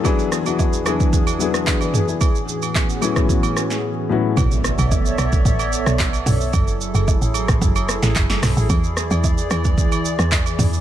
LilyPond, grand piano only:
\new Staff \with { instrumentName = "Grand piano" } { \time 4/4 \key b \dorian \tempo 4 = 111 << { r2. r16 <b' d''>16 <gis' b'>16 <e' gis'>16~ | <e' gis'>16 r2. r8. | r1 | r1 |
r1 | } \\ { <fis b d' e' gis'>8 r16 <fis b d' e' fis'>8 r16 <fis b d' e' gis'>8. r16 <fis b d' e' gis'>4. | r4. <a, fis b cis' e' gis'>4. r8 <a, fis b cis' e' fis'>8 | r1 | r1 |
r1 | } >> }